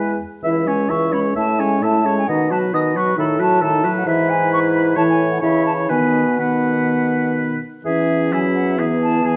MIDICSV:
0, 0, Header, 1, 6, 480
1, 0, Start_track
1, 0, Key_signature, 4, "major"
1, 0, Tempo, 462606
1, 458, Time_signature, 4, 2, 24, 8
1, 2366, Tempo, 449102
1, 5726, Tempo, 486618
1, 8126, Tempo, 463679
1, 9688, End_track
2, 0, Start_track
2, 0, Title_t, "Flute"
2, 0, Program_c, 0, 73
2, 0, Note_on_c, 0, 80, 41
2, 180, Note_off_c, 0, 80, 0
2, 455, Note_on_c, 0, 76, 47
2, 518, Note_off_c, 0, 76, 0
2, 696, Note_on_c, 0, 80, 43
2, 935, Note_on_c, 0, 85, 45
2, 951, Note_off_c, 0, 80, 0
2, 1174, Note_off_c, 0, 85, 0
2, 1179, Note_on_c, 0, 83, 37
2, 1241, Note_off_c, 0, 83, 0
2, 1423, Note_on_c, 0, 81, 40
2, 1656, Note_on_c, 0, 80, 42
2, 1671, Note_off_c, 0, 81, 0
2, 1892, Note_off_c, 0, 80, 0
2, 1896, Note_on_c, 0, 81, 47
2, 2244, Note_off_c, 0, 81, 0
2, 2261, Note_on_c, 0, 80, 39
2, 2361, Note_on_c, 0, 78, 43
2, 2377, Note_off_c, 0, 80, 0
2, 2606, Note_off_c, 0, 78, 0
2, 2616, Note_on_c, 0, 81, 42
2, 2680, Note_off_c, 0, 81, 0
2, 2857, Note_on_c, 0, 87, 58
2, 2921, Note_off_c, 0, 87, 0
2, 3101, Note_on_c, 0, 85, 50
2, 3326, Note_off_c, 0, 85, 0
2, 3338, Note_on_c, 0, 83, 48
2, 3402, Note_off_c, 0, 83, 0
2, 3574, Note_on_c, 0, 81, 56
2, 3801, Note_off_c, 0, 81, 0
2, 3811, Note_on_c, 0, 81, 58
2, 4153, Note_off_c, 0, 81, 0
2, 4169, Note_on_c, 0, 78, 49
2, 4276, Note_on_c, 0, 76, 62
2, 4292, Note_off_c, 0, 78, 0
2, 4518, Note_on_c, 0, 80, 55
2, 4535, Note_off_c, 0, 76, 0
2, 4756, Note_off_c, 0, 80, 0
2, 4769, Note_on_c, 0, 85, 73
2, 4833, Note_off_c, 0, 85, 0
2, 5008, Note_on_c, 0, 83, 46
2, 5072, Note_off_c, 0, 83, 0
2, 5239, Note_on_c, 0, 81, 56
2, 5293, Note_off_c, 0, 81, 0
2, 5368, Note_on_c, 0, 80, 50
2, 5595, Note_off_c, 0, 80, 0
2, 5601, Note_on_c, 0, 78, 53
2, 5713, Note_off_c, 0, 78, 0
2, 5719, Note_on_c, 0, 76, 54
2, 5952, Note_off_c, 0, 76, 0
2, 5961, Note_on_c, 0, 81, 47
2, 6020, Note_off_c, 0, 81, 0
2, 6184, Note_on_c, 0, 80, 48
2, 6684, Note_on_c, 0, 78, 37
2, 6699, Note_off_c, 0, 80, 0
2, 7647, Note_off_c, 0, 78, 0
2, 8117, Note_on_c, 0, 76, 41
2, 8573, Note_off_c, 0, 76, 0
2, 8614, Note_on_c, 0, 80, 46
2, 8676, Note_off_c, 0, 80, 0
2, 8839, Note_on_c, 0, 78, 40
2, 9080, Note_off_c, 0, 78, 0
2, 9093, Note_on_c, 0, 76, 38
2, 9155, Note_off_c, 0, 76, 0
2, 9338, Note_on_c, 0, 81, 43
2, 9575, Note_on_c, 0, 80, 39
2, 9591, Note_off_c, 0, 81, 0
2, 9688, Note_off_c, 0, 80, 0
2, 9688, End_track
3, 0, Start_track
3, 0, Title_t, "Oboe"
3, 0, Program_c, 1, 68
3, 0, Note_on_c, 1, 71, 33
3, 184, Note_off_c, 1, 71, 0
3, 450, Note_on_c, 1, 76, 30
3, 700, Note_on_c, 1, 73, 26
3, 715, Note_off_c, 1, 76, 0
3, 926, Note_on_c, 1, 76, 29
3, 941, Note_off_c, 1, 73, 0
3, 1163, Note_on_c, 1, 73, 29
3, 1179, Note_off_c, 1, 76, 0
3, 1401, Note_off_c, 1, 73, 0
3, 1407, Note_on_c, 1, 76, 30
3, 1653, Note_on_c, 1, 73, 27
3, 1668, Note_off_c, 1, 76, 0
3, 1896, Note_on_c, 1, 76, 26
3, 1912, Note_off_c, 1, 73, 0
3, 2130, Note_on_c, 1, 73, 27
3, 2146, Note_off_c, 1, 76, 0
3, 2363, Note_off_c, 1, 73, 0
3, 2369, Note_on_c, 1, 75, 31
3, 2611, Note_on_c, 1, 71, 27
3, 2627, Note_off_c, 1, 75, 0
3, 2855, Note_on_c, 1, 75, 34
3, 2871, Note_off_c, 1, 71, 0
3, 3094, Note_on_c, 1, 71, 30
3, 3110, Note_off_c, 1, 75, 0
3, 3327, Note_off_c, 1, 71, 0
3, 3332, Note_on_c, 1, 69, 30
3, 3559, Note_on_c, 1, 71, 31
3, 3575, Note_off_c, 1, 69, 0
3, 3796, Note_on_c, 1, 69, 35
3, 3812, Note_off_c, 1, 71, 0
3, 4038, Note_on_c, 1, 71, 36
3, 4054, Note_off_c, 1, 69, 0
3, 4274, Note_off_c, 1, 71, 0
3, 4283, Note_on_c, 1, 71, 44
3, 5230, Note_on_c, 1, 73, 43
3, 5246, Note_off_c, 1, 71, 0
3, 5697, Note_off_c, 1, 73, 0
3, 5704, Note_on_c, 1, 73, 38
3, 6188, Note_on_c, 1, 71, 36
3, 6203, Note_off_c, 1, 73, 0
3, 6680, Note_off_c, 1, 71, 0
3, 6686, Note_on_c, 1, 71, 35
3, 7863, Note_off_c, 1, 71, 0
3, 8121, Note_on_c, 1, 68, 33
3, 8609, Note_on_c, 1, 64, 37
3, 8625, Note_off_c, 1, 68, 0
3, 9095, Note_on_c, 1, 68, 31
3, 9111, Note_off_c, 1, 64, 0
3, 9562, Note_off_c, 1, 68, 0
3, 9568, Note_on_c, 1, 68, 36
3, 9688, Note_off_c, 1, 68, 0
3, 9688, End_track
4, 0, Start_track
4, 0, Title_t, "Clarinet"
4, 0, Program_c, 2, 71
4, 0, Note_on_c, 2, 64, 32
4, 182, Note_off_c, 2, 64, 0
4, 457, Note_on_c, 2, 64, 30
4, 700, Note_on_c, 2, 61, 26
4, 716, Note_off_c, 2, 64, 0
4, 933, Note_on_c, 2, 64, 30
4, 949, Note_off_c, 2, 61, 0
4, 1171, Note_on_c, 2, 61, 27
4, 1186, Note_off_c, 2, 64, 0
4, 1407, Note_off_c, 2, 61, 0
4, 1413, Note_on_c, 2, 64, 30
4, 1652, Note_on_c, 2, 61, 31
4, 1668, Note_off_c, 2, 64, 0
4, 1883, Note_on_c, 2, 64, 29
4, 1899, Note_off_c, 2, 61, 0
4, 2126, Note_on_c, 2, 61, 26
4, 2141, Note_off_c, 2, 64, 0
4, 2362, Note_off_c, 2, 61, 0
4, 2369, Note_on_c, 2, 63, 33
4, 2607, Note_on_c, 2, 66, 29
4, 2623, Note_off_c, 2, 63, 0
4, 2844, Note_on_c, 2, 63, 26
4, 2860, Note_off_c, 2, 66, 0
4, 3080, Note_on_c, 2, 66, 29
4, 3096, Note_off_c, 2, 63, 0
4, 3310, Note_off_c, 2, 66, 0
4, 3316, Note_on_c, 2, 63, 34
4, 3554, Note_on_c, 2, 66, 37
4, 3570, Note_off_c, 2, 63, 0
4, 3787, Note_on_c, 2, 63, 37
4, 3803, Note_off_c, 2, 66, 0
4, 4028, Note_on_c, 2, 66, 35
4, 4044, Note_off_c, 2, 63, 0
4, 4256, Note_off_c, 2, 66, 0
4, 4263, Note_on_c, 2, 64, 38
4, 5185, Note_off_c, 2, 64, 0
4, 5236, Note_on_c, 2, 64, 41
4, 5714, Note_off_c, 2, 64, 0
4, 5720, Note_on_c, 2, 64, 39
4, 6197, Note_on_c, 2, 59, 35
4, 6212, Note_off_c, 2, 64, 0
4, 6673, Note_off_c, 2, 59, 0
4, 6679, Note_on_c, 2, 59, 32
4, 7860, Note_off_c, 2, 59, 0
4, 8121, Note_on_c, 2, 61, 29
4, 9086, Note_on_c, 2, 59, 32
4, 9102, Note_off_c, 2, 61, 0
4, 9688, Note_off_c, 2, 59, 0
4, 9688, End_track
5, 0, Start_track
5, 0, Title_t, "French horn"
5, 0, Program_c, 3, 60
5, 0, Note_on_c, 3, 56, 35
5, 215, Note_off_c, 3, 56, 0
5, 455, Note_on_c, 3, 52, 29
5, 694, Note_on_c, 3, 56, 27
5, 710, Note_off_c, 3, 52, 0
5, 930, Note_on_c, 3, 52, 24
5, 945, Note_off_c, 3, 56, 0
5, 1175, Note_on_c, 3, 56, 26
5, 1191, Note_off_c, 3, 52, 0
5, 1410, Note_off_c, 3, 56, 0
5, 1416, Note_on_c, 3, 57, 26
5, 1651, Note_on_c, 3, 56, 27
5, 1666, Note_off_c, 3, 57, 0
5, 1895, Note_on_c, 3, 57, 30
5, 1911, Note_off_c, 3, 56, 0
5, 2129, Note_on_c, 3, 56, 27
5, 2144, Note_off_c, 3, 57, 0
5, 2366, Note_off_c, 3, 56, 0
5, 2374, Note_on_c, 3, 51, 32
5, 2613, Note_on_c, 3, 54, 28
5, 2629, Note_off_c, 3, 51, 0
5, 2857, Note_on_c, 3, 51, 27
5, 2873, Note_off_c, 3, 54, 0
5, 3097, Note_on_c, 3, 54, 31
5, 3113, Note_off_c, 3, 51, 0
5, 3312, Note_off_c, 3, 54, 0
5, 3319, Note_on_c, 3, 51, 34
5, 3560, Note_on_c, 3, 54, 33
5, 3576, Note_off_c, 3, 51, 0
5, 3798, Note_on_c, 3, 51, 36
5, 3814, Note_off_c, 3, 54, 0
5, 4037, Note_on_c, 3, 54, 35
5, 4053, Note_off_c, 3, 51, 0
5, 4264, Note_off_c, 3, 54, 0
5, 4270, Note_on_c, 3, 52, 46
5, 5189, Note_off_c, 3, 52, 0
5, 5237, Note_on_c, 3, 52, 44
5, 5717, Note_off_c, 3, 52, 0
5, 5730, Note_on_c, 3, 52, 40
5, 6192, Note_off_c, 3, 52, 0
5, 6200, Note_on_c, 3, 51, 35
5, 6543, Note_off_c, 3, 51, 0
5, 6686, Note_on_c, 3, 51, 30
5, 7863, Note_off_c, 3, 51, 0
5, 8116, Note_on_c, 3, 52, 32
5, 8609, Note_on_c, 3, 54, 29
5, 8624, Note_off_c, 3, 52, 0
5, 9091, Note_on_c, 3, 52, 32
5, 9106, Note_off_c, 3, 54, 0
5, 9558, Note_off_c, 3, 52, 0
5, 9564, Note_on_c, 3, 52, 37
5, 9688, Note_off_c, 3, 52, 0
5, 9688, End_track
6, 0, Start_track
6, 0, Title_t, "Bassoon"
6, 0, Program_c, 4, 70
6, 0, Note_on_c, 4, 40, 37
6, 182, Note_off_c, 4, 40, 0
6, 446, Note_on_c, 4, 37, 38
6, 873, Note_off_c, 4, 37, 0
6, 929, Note_on_c, 4, 37, 36
6, 1355, Note_off_c, 4, 37, 0
6, 1410, Note_on_c, 4, 45, 37
6, 1831, Note_off_c, 4, 45, 0
6, 1898, Note_on_c, 4, 45, 33
6, 2314, Note_off_c, 4, 45, 0
6, 2371, Note_on_c, 4, 47, 39
6, 2794, Note_off_c, 4, 47, 0
6, 2847, Note_on_c, 4, 47, 44
6, 3267, Note_off_c, 4, 47, 0
6, 3325, Note_on_c, 4, 45, 41
6, 3744, Note_off_c, 4, 45, 0
6, 3795, Note_on_c, 4, 45, 45
6, 4214, Note_off_c, 4, 45, 0
6, 4264, Note_on_c, 4, 44, 46
6, 5229, Note_on_c, 4, 45, 48
6, 5245, Note_off_c, 4, 44, 0
6, 5713, Note_off_c, 4, 45, 0
6, 5719, Note_on_c, 4, 49, 41
6, 6196, Note_on_c, 4, 47, 41
6, 6211, Note_off_c, 4, 49, 0
6, 7887, Note_off_c, 4, 47, 0
6, 8121, Note_on_c, 4, 40, 36
6, 9688, Note_off_c, 4, 40, 0
6, 9688, End_track
0, 0, End_of_file